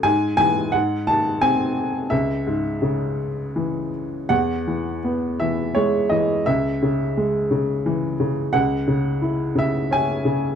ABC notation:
X:1
M:3/4
L:1/8
Q:1/4=86
K:C#m
V:1 name="Upright piano"
g g f a g2 | e4- e z | [K:E] f2 z e c d | e4- e z |
f3 e g2 |]
V:2 name="Upright piano" clef=bass
G,, E, G,, D, ^B,2 | C,, G,, C,2 E,2 | [K:E] E,, E, B, E, G, E, | C,, C, G, C, E, C, |
C,, C, E C, C C, |]